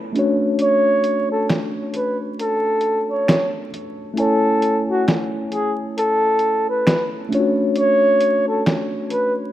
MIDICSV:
0, 0, Header, 1, 4, 480
1, 0, Start_track
1, 0, Tempo, 895522
1, 319, Time_signature, 4, 2, 24, 8
1, 5104, End_track
2, 0, Start_track
2, 0, Title_t, "Flugelhorn"
2, 0, Program_c, 0, 56
2, 329, Note_on_c, 0, 73, 96
2, 682, Note_off_c, 0, 73, 0
2, 708, Note_on_c, 0, 69, 69
2, 794, Note_off_c, 0, 69, 0
2, 1051, Note_on_c, 0, 71, 68
2, 1171, Note_off_c, 0, 71, 0
2, 1290, Note_on_c, 0, 69, 82
2, 1642, Note_off_c, 0, 69, 0
2, 1670, Note_on_c, 0, 73, 71
2, 1882, Note_off_c, 0, 73, 0
2, 2251, Note_on_c, 0, 69, 89
2, 2603, Note_off_c, 0, 69, 0
2, 2630, Note_on_c, 0, 66, 84
2, 2715, Note_off_c, 0, 66, 0
2, 2968, Note_on_c, 0, 68, 83
2, 3089, Note_off_c, 0, 68, 0
2, 3209, Note_on_c, 0, 69, 98
2, 3588, Note_on_c, 0, 71, 78
2, 3596, Note_off_c, 0, 69, 0
2, 3801, Note_off_c, 0, 71, 0
2, 4168, Note_on_c, 0, 73, 94
2, 4521, Note_off_c, 0, 73, 0
2, 4547, Note_on_c, 0, 69, 68
2, 4634, Note_off_c, 0, 69, 0
2, 4889, Note_on_c, 0, 71, 80
2, 5010, Note_off_c, 0, 71, 0
2, 5104, End_track
3, 0, Start_track
3, 0, Title_t, "Tine electric piano"
3, 0, Program_c, 1, 4
3, 0, Control_c, 1, 64, 127
3, 0, Note_on_c, 1, 73, 68
3, 0, Note_on_c, 1, 80, 65
3, 56, Note_off_c, 1, 80, 0
3, 60, Note_off_c, 1, 73, 0
3, 69, Note_on_c, 1, 57, 69
3, 77, Note_on_c, 1, 61, 59
3, 85, Control_c, 1, 64, 0
3, 86, Note_on_c, 1, 62, 68
3, 93, Note_on_c, 1, 66, 56
3, 102, Note_on_c, 1, 73, 73
3, 165, Control_c, 1, 64, 127
3, 1972, Note_off_c, 1, 57, 0
3, 1976, Note_off_c, 1, 61, 0
3, 1981, Note_off_c, 1, 62, 0
3, 1984, Note_off_c, 1, 66, 0
3, 1989, Note_off_c, 1, 73, 0
3, 2218, Note_on_c, 1, 57, 69
3, 2226, Note_on_c, 1, 61, 61
3, 2234, Note_on_c, 1, 64, 56
3, 2242, Note_on_c, 1, 80, 60
3, 2246, Control_c, 1, 64, 0
3, 2250, Note_on_c, 1, 73, 67
3, 2328, Control_c, 1, 64, 127
3, 3887, Note_off_c, 1, 57, 0
3, 3891, Note_off_c, 1, 61, 0
3, 3895, Note_off_c, 1, 64, 0
3, 3899, Note_off_c, 1, 80, 0
3, 3903, Note_off_c, 1, 73, 0
3, 3907, Note_on_c, 1, 57, 70
3, 3915, Note_on_c, 1, 61, 65
3, 3922, Note_on_c, 1, 62, 63
3, 3926, Control_c, 1, 64, 0
3, 3931, Note_on_c, 1, 65, 46
3, 3938, Note_on_c, 1, 73, 80
3, 3965, Note_off_c, 1, 65, 0
3, 3965, Note_on_c, 1, 66, 66
3, 4004, Control_c, 1, 64, 127
3, 5104, Note_off_c, 1, 57, 0
3, 5104, Note_off_c, 1, 61, 0
3, 5104, Note_off_c, 1, 62, 0
3, 5104, Note_off_c, 1, 66, 0
3, 5104, Note_off_c, 1, 73, 0
3, 5104, End_track
4, 0, Start_track
4, 0, Title_t, "Drums"
4, 83, Note_on_c, 9, 42, 57
4, 137, Note_off_c, 9, 42, 0
4, 315, Note_on_c, 9, 42, 73
4, 369, Note_off_c, 9, 42, 0
4, 556, Note_on_c, 9, 42, 65
4, 610, Note_off_c, 9, 42, 0
4, 801, Note_on_c, 9, 26, 70
4, 801, Note_on_c, 9, 42, 62
4, 804, Note_on_c, 9, 38, 83
4, 855, Note_off_c, 9, 26, 0
4, 855, Note_off_c, 9, 42, 0
4, 858, Note_off_c, 9, 38, 0
4, 1038, Note_on_c, 9, 42, 64
4, 1092, Note_off_c, 9, 42, 0
4, 1283, Note_on_c, 9, 42, 76
4, 1337, Note_off_c, 9, 42, 0
4, 1505, Note_on_c, 9, 42, 49
4, 1558, Note_off_c, 9, 42, 0
4, 1760, Note_on_c, 9, 26, 89
4, 1763, Note_on_c, 9, 38, 112
4, 1763, Note_on_c, 9, 42, 82
4, 1814, Note_off_c, 9, 26, 0
4, 1816, Note_off_c, 9, 42, 0
4, 1817, Note_off_c, 9, 38, 0
4, 2003, Note_on_c, 9, 42, 59
4, 2057, Note_off_c, 9, 42, 0
4, 2237, Note_on_c, 9, 42, 80
4, 2291, Note_off_c, 9, 42, 0
4, 2477, Note_on_c, 9, 42, 62
4, 2531, Note_off_c, 9, 42, 0
4, 2722, Note_on_c, 9, 26, 67
4, 2722, Note_on_c, 9, 42, 58
4, 2725, Note_on_c, 9, 38, 95
4, 2775, Note_off_c, 9, 42, 0
4, 2776, Note_off_c, 9, 26, 0
4, 2779, Note_off_c, 9, 38, 0
4, 2958, Note_on_c, 9, 42, 59
4, 3011, Note_off_c, 9, 42, 0
4, 3204, Note_on_c, 9, 42, 81
4, 3257, Note_off_c, 9, 42, 0
4, 3425, Note_on_c, 9, 42, 50
4, 3479, Note_off_c, 9, 42, 0
4, 3681, Note_on_c, 9, 26, 92
4, 3683, Note_on_c, 9, 42, 83
4, 3684, Note_on_c, 9, 38, 101
4, 3734, Note_off_c, 9, 26, 0
4, 3737, Note_off_c, 9, 38, 0
4, 3737, Note_off_c, 9, 42, 0
4, 3926, Note_on_c, 9, 42, 66
4, 3980, Note_off_c, 9, 42, 0
4, 4157, Note_on_c, 9, 42, 76
4, 4211, Note_off_c, 9, 42, 0
4, 4398, Note_on_c, 9, 42, 70
4, 4451, Note_off_c, 9, 42, 0
4, 4643, Note_on_c, 9, 42, 64
4, 4644, Note_on_c, 9, 26, 74
4, 4647, Note_on_c, 9, 38, 94
4, 4697, Note_off_c, 9, 26, 0
4, 4697, Note_off_c, 9, 42, 0
4, 4701, Note_off_c, 9, 38, 0
4, 4880, Note_on_c, 9, 42, 62
4, 4933, Note_off_c, 9, 42, 0
4, 5104, End_track
0, 0, End_of_file